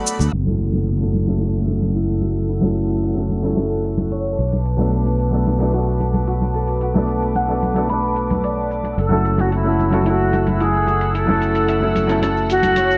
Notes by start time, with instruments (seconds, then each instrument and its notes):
Already playing: grand piano F#3 A3 B3 D4 A4, harp F#4 F#5 B5, string section A4 D5 B5
0.07 cabasa
0.19 fingered electric bass D2, muted conga, cabasa
0.33 fingered electric bass F#1, string section A4 F#5 E6, closed hi-hat, downlifter, muted conga
0.45 grand piano F#3 A3 C#4 E4 A4, high conga
0.60 closed hi-hat, cabasa
0.74 closed hi-hat, muted conga
0.87 closed hi-hat, cabasa
0.99 grand piano F#3 A3 C#4 E4 A4
1.14 closed hi-hat, high conga, cabasa
1.26 grand piano F#3 A3 C#4 E4 A4, closed hi-hat, muted conga
1.37 grand piano F#3 A3 C#4, harp E4, closed hi-hat
1.41 grand piano E4 A4, cabasa
1.68 closed hi-hat, muted conga, cabasa
1.82 closed hi-hat, high conga
1.95 harp E4, closed hi-hat, cabasa
2.09 cabasa
2.22 harp F#4, closed hi-hat, muted conga, cabasa
2.36 closed hi-hat, cabasa
2.49 harp E4, closed hi-hat, cabasa
2.60 grand piano F#3 A3 C#4 E4, muted conga, high conga
2.64 grand piano A4
2.76 closed hi-hat, cabasa
2.90 closed hi-hat, cabasa
3.04 harp E5, closed hi-hat, cabasa
3.15 grand piano F#3 A3 C#4 E4 A4, muted conga
3.30 closed hi-hat, high conga, cabasa
3.42 grand piano F#3 A3 C#4 E4 A4, closed hi-hat
3.53 grand piano F#3 A3
3.57 grand piano C#4 E4 A4, harp A5, closed hi-hat, muted conga, cabasa
3.72 cabasa
3.85 closed hi-hat, cabasa
3.98 closed hi-hat, high conga, cabasa
4.11 harp C#5, closed hi-hat, muted conga, cabasa
4.26 cabasa
4.38 fingered electric bass B1, string section B4 A5 D6, closed hi-hat, cabasa
4.52 closed hi-hat, muted conga, cabasa
4.66 closed hi-hat, cabasa
4.77 grand piano F#3 A3 B3 D4, high conga
4.81 grand piano A4
4.93 closed hi-hat, cabasa
5.06 closed hi-hat, muted conga, cabasa
5.19 closed hi-hat, cabasa
5.31 grand piano F#3 A3 B3 D4 A4
5.46 closed hi-hat, muted conga, high conga, cabasa
5.59 grand piano F#3 A3 B3 D4, closed hi-hat, cabasa
5.63 grand piano A4
5.70 grand piano F#3 A3 B3, harp F#4, closed hi-hat
5.74 grand piano D4 A4, cabasa
6.00 closed hi-hat, muted conga, cabasa
6.14 closed hi-hat, high conga, cabasa
6.27 harp F#4, closed hi-hat, cabasa
6.42 muted conga, cabasa
6.54 harp A4, closed hi-hat, cabasa
6.68 closed hi-hat, cabasa
6.81 harp F#4, closed hi-hat, cabasa
6.94 grand piano F#3 A3 B3 D4 A4, muted conga, high conga
7.08 closed hi-hat, cabasa
7.22 closed hi-hat, cabasa
7.35 harp F#5, closed hi-hat, muted conga, cabasa
7.47 grand piano F#3 A3 B3 D4 A4
7.63 closed hi-hat, high conga, cabasa
7.74 grand piano F#3 A3 B3 D4 A4, closed hi-hat, cabasa
7.86 grand piano F#3 A3 B3, harp B5, closed hi-hat
7.90 grand piano D4 A4, muted conga, cabasa
8.03 cabasa
8.16 closed hi-hat, cabasa
8.30 closed hi-hat, muted conga, high conga, cabasa
8.44 harp D5, closed hi-hat, cabasa
8.58 cabasa
8.71 closed hi-hat, cabasa
8.84 closed hi-hat, muted conga, cabasa
8.98 fingered electric bass F#1, string section A4 F#5 E6, flute A4, closed hi-hat, muted conga, cabasa
9.09 grand piano F#3 A3 C#4 E4 A4, high conga
9.25 closed hi-hat, cabasa
9.38 flute F#4, closed hi-hat, muted conga, cabasa
9.52 flute E4, closed hi-hat, cabasa
9.64 grand piano F#3 A3 C#4 E4 A4
9.80 closed hi-hat, high conga, cabasa
9.90 grand piano F#3 A3 C#4 E4 A4, flute F#4, closed hi-hat, muted conga, cabasa
10.02 grand piano F#3 A3 C#4
10.06 harp E4, grand piano E4 A4, flute F#4, closed hi-hat, cabasa
10.33 closed hi-hat, muted conga, cabasa
10.47 flute E4, closed hi-hat, high conga, cabasa
10.60 harp E4, flute G#4, closed hi-hat, cabasa
10.74 cabasa
10.87 harp F#4, closed hi-hat, muted conga, cabasa
11.01 closed hi-hat, cabasa
11.14 harp E4, flute A4, closed hi-hat, cabasa
11.26 grand piano F#3 A3 C#4 E4 A4, muted conga, high conga
11.42 closed hi-hat, cabasa
11.55 closed hi-hat, cabasa
11.68 harp E5, closed hi-hat, cabasa
11.80 grand piano F#3 A3 C#4 E4 A4, muted conga
11.96 closed hi-hat, high conga, cabasa
12.07 grand piano F#3 A3 C#4 E4, closed hi-hat, cabasa
12.11 grand piano A4
12.19 grand piano F#3 A3 C#4, muted conga
12.23 grand piano E4 A4, harp A5, closed hi-hat, cabasa
12.37 cabasa
12.50 flute F#4, closed hi-hat, cabasa
12.63 closed hi-hat, high conga, cabasa
12.76 harp C#5, closed hi-hat, muted conga, cabasa
12.91 cabasa